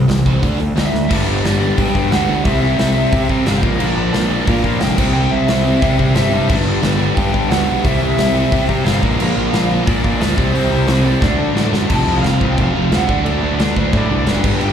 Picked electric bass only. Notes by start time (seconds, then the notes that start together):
0.09 C2
0.26 C2
0.43 D2
0.59 D2
0.76 D2
0.93 D2
1.11 G1
1.27 G1
1.45 G1
1.78 G2
1.95 G2
2.12 D2
2.28 D2
2.45 C2
2.62 C2
2.78 C2
3.13 C3
3.29 C3
3.46 G1
3.63 A#1
3.80 A#1
3.97 A#1
4.14 A#1
4.48 A#2
4.64 A#2
4.81 F1
4.98 C2
5.15 C2
5.32 C2
5.49 C2
5.82 C3
5.99 C3
6.15 G1
6.31 G2
6.50 G1
6.65 G1
6.83 G1
7.17 G2
7.34 G2
7.50 D2
7.67 B1
7.84 C2
8.01 C2
8.18 C2
8.52 C3
8.69 C3
8.85 G1
9.03 A#1
9.20 A#1
9.37 A#1
9.53 A#1
9.88 A#2
10.04 A#2
10.20 D2
10.38 C2
10.54 C2
10.70 C2
10.87 C2
11.22 D2
11.38 D3
11.54 A1
11.72 F#2
11.90 F1
12.06 C2
12.23 F1
12.41 C2
12.58 F1
12.75 F1
12.92 D2
13.09 D2
13.25 D2
13.43 D2
13.59 D2
13.76 D2
13.93 A2
14.10 C2
14.27 F#1
14.44 G1
14.62 G1